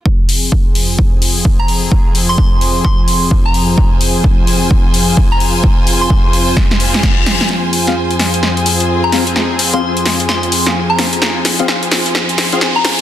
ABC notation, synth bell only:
X:1
M:4/4
L:1/16
Q:"Swing 16ths" 1/4=129
K:Fm
V:1 name="Synth bell"
z12 z b z2 | z3 c'4- c' c' z4 b3 | z12 z b z2 | z3 c'4- c' z8 |
z12 z b z2 | z3 c'4- c' c' z4 b3 | z12 z b z2 |]